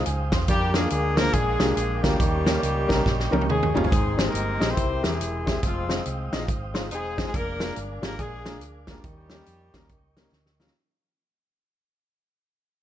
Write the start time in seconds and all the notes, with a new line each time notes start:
Already playing: C5 F5 G5 D#6
0.06 C#2 G#5, closed hi-hat
0.32 E2 C6, kick, snare, closed hi-hat
0.48 F2 G3 A#3 D4 G4 A#4 D6, kick, closed hi-hat
0.74 G#3 A#3 D4 F4 G#4 A#4, snare, closed hi-hat
0.90 D2 G#3 G#4, closed hi-hat
1.16 G#3 A#3 D4 F4 A#4 C5, snare, closed hi-hat
1.32 A#1 G#3 D4 G#4, kick, closed hi-hat
1.60 C2 G#3 A#3 D4 F4 G4, snare, closed hi-hat
1.75 A#1 G#3 G#4, closed hi-hat
2.01 D2 G3 G#3 A#3 C#4 D4 F4 G4 A#4, kick, snare, closed hi-hat
2.20 D#2 D#3 D#5 G5 C#6, kick, closed hi-hat
2.46 G3 A#3 C#4 D#4 A#4, snare, closed hi-hat
2.63 C#2, closed hi-hat
2.88 C2 G3 A#3 C#4 D#4 A#4, kick, snare, closed hi-hat
3.05 A#1, kick, snare
3.20 snare
3.31 C#2 G3 A#3 C#4 D#4 A#4, high tom
3.41 high tom
3.48 D#2 G#3 C#4 G#4, mid tom
3.63 mid tom
3.74 G1 G3 A#3 C#4 D#4 F4, floor tom
3.84 G#3 C4 D#4 G#4, floor tom
3.91 G#1 G#2 G#3 D#5 G5 C6, kick, closed hi-hat
4.17 G#3 C4 D#4 G4 C5, snare, closed hi-hat
4.26 A#3 D#4 G4 A#4
4.34 G1, closed hi-hat
4.60 A#1 G#3 C4 D#4 G4 D#5, snare, closed hi-hat
4.70 C4 E4 G4 C5
4.76 C2 C3 A#4 E5 G5, kick, closed hi-hat
5.02 E2 G#3 C4 E4 G4 G#4 A#4, snare, closed hi-hat
5.20 E1, closed hi-hat
5.46 G#3 C4 E4 G4 C5, kick, snare, closed hi-hat
5.62 F1 F3 G#3 C4 F4 C5 F5 D#6, kick, closed hi-hat
5.89 G#3 C4 D#4 F4 C5, snare, closed hi-hat
6.05 C2, closed hi-hat
6.32 A#1 G#3 C4 D#4 F4 D#5, snare, closed hi-hat
6.48 G#1, kick, closed hi-hat
6.74 G#3 C4 D#4 F4 C5, snare, closed hi-hat
6.91 E1 G#3 C4 D#4 G#4, closed hi-hat
7.17 G#3 C4 D#4 F4 G#4, kick, snare, closed hi-hat
7.27 G#3 G#4
7.33 F1 A#3 D4 A#4 G#5 D6, kick, closed hi-hat
7.60 G#3 A#3 D4 F4 A#4, snare, closed hi-hat
7.76 G1, closed hi-hat
8.02 G#1 G#3 A#3 D4 F4 G4 A#4, snare, closed hi-hat
8.19 A#1 G#3 D4 G#4, kick, closed hi-hat
8.46 G#3 A#3 D4 F4 A#4, snare, closed hi-hat
8.61 D2, closed hi-hat
8.87 G3 G#3 A#3 C#4 D4 F4 G4 A#4, kick, snare, closed hi-hat
9.04 D#2 D#3 D#5 G5 C#6, kick, closed hi-hat
9.30 G3 A#3 C#4 D#4 A#4, snare, closed hi-hat
9.46 F2, closed hi-hat
9.74 D#2 G3 A#3 C#4 D#4 A#4, kick, snare, closed hi-hat
9.89 C#2, kick, closed hi-hat
10.17 G3 A#3 C#4 D#4 A#4, snare, closed hi-hat
10.32 D2, snare
10.46 snare
10.60 G3 A#3 C#4 D#4 F4, snare
10.67 snare